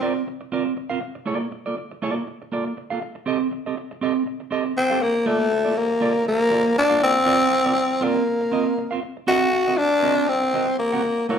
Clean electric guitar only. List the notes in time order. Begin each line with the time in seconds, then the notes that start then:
0.01 C4 F4 A#4 D5
0.16 muted clean electric guitar stroke
0.27 muted clean electric guitar stroke
0.41 muted clean electric guitar stroke
0.52 C4 F4 A#4 D5
0.66 muted clean electric guitar stroke
0.77 muted clean electric guitar stroke
0.90 C4 F4 A#4 F5
1.01 muted clean electric guitar stroke
1.15 muted clean electric guitar stroke
1.26 A#3 F4 A4 D5
1.41 muted clean electric guitar stroke
1.51 muted clean electric guitar stroke
1.66 A#3 F4 A4 D5
1.77 muted clean electric guitar stroke
1.92 muted clean electric guitar stroke
2.02 A#3 F4 A4 D5
2.17 muted clean electric guitar stroke
2.27 muted clean electric guitar stroke
2.42 muted clean electric guitar stroke
2.52 A#3 F4 A4 D5
2.66 muted clean electric guitar stroke
2.77 muted clean electric guitar stroke
2.90 A#3 F4 A4 F5
3.01 muted clean electric guitar stroke
3.15 muted clean electric guitar stroke
3.26 C4 G4 A4 D#5
3.40 muted clean electric guitar stroke
3.51 muted clean electric guitar stroke
3.66 C4 G4 A4 D#5
3.77 muted clean electric guitar stroke
3.91 muted clean electric guitar stroke
4.01 C4 G4 A4 D#5
4.15 muted clean electric guitar stroke
4.26 muted clean electric guitar stroke
4.40 muted clean electric guitar stroke
4.51 C4 G4 A4 D#5
4.66 muted clean electric guitar stroke
4.76 muted clean electric guitar stroke
4.90 C4 G4 A4 F5
5.02 muted clean electric guitar stroke
5.15 muted clean electric guitar stroke
5.26 A#3 F4 A4 D5
5.41 muted clean electric guitar stroke
5.52 muted clean electric guitar stroke
5.65 A#3 F4 A4 D5
5.76 muted clean electric guitar stroke
5.90 muted clean electric guitar stroke
6.01 A#3 F4 A4 D5
6.15 muted clean electric guitar stroke
6.26 muted clean electric guitar stroke
6.40 muted clean electric guitar stroke
6.51 A#3 F4 A4 D5
6.65 muted clean electric guitar stroke
6.76 muted clean electric guitar stroke
6.89 A#3 F4 A4 F5
7.00 A#3 F4 A4 D5
7.15 muted clean electric guitar stroke
7.26 C4 F4 A#4 D5
7.40 muted clean electric guitar stroke
7.51 muted clean electric guitar stroke
7.65 C4 F4 A#4 D5
7.76 muted clean electric guitar stroke
7.90 muted clean electric guitar stroke
8.01 C4 F4 A#4 D5
8.16 muted clean electric guitar stroke
8.27 muted clean electric guitar stroke
8.41 muted clean electric guitar stroke
8.52 C4 F4 A#4 D#5
8.67 muted clean electric guitar stroke
8.78 muted clean electric guitar stroke
8.91 C4 F4 A#4 F5
9.02 muted clean electric guitar stroke
9.17 muted clean electric guitar stroke
9.27 C4 F#4 A#4 D#5
9.41 muted clean electric guitar stroke
9.53 muted clean electric guitar stroke
9.67 C4 F#4 A#4 D#5
9.78 muted clean electric guitar stroke
9.91 muted clean electric guitar stroke
10.03 C4 F#4 A#4 D#5
10.17 muted clean electric guitar stroke
10.28 muted clean electric guitar stroke
10.43 muted clean electric guitar stroke
10.54 C4 F#4 A#4 D#5
10.69 muted clean electric guitar stroke
10.79 muted clean electric guitar stroke
10.92 C4 F#4 A#4 F#5
11.04 muted clean electric guitar stroke
11.18 muted clean electric guitar stroke
11.29 A#3 F4 G4 D5